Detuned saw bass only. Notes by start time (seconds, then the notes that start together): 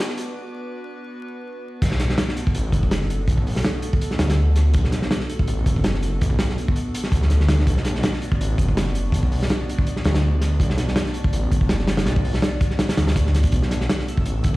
1.82 B1
2.55 A1
2.72 F#1
3.28 B1
4.20 D2
4.75 B1
5.48 A1
5.66 F#1
6.22 B1
7.12 D2
7.67 B1
8.40 A1
8.58 F#1
9.12 B1
10.05 D2
10.60 B1
11.33 A1
11.52 F#1
12.06 B1
12.97 D2
13.53 B1
14.26 A1
14.44 F#1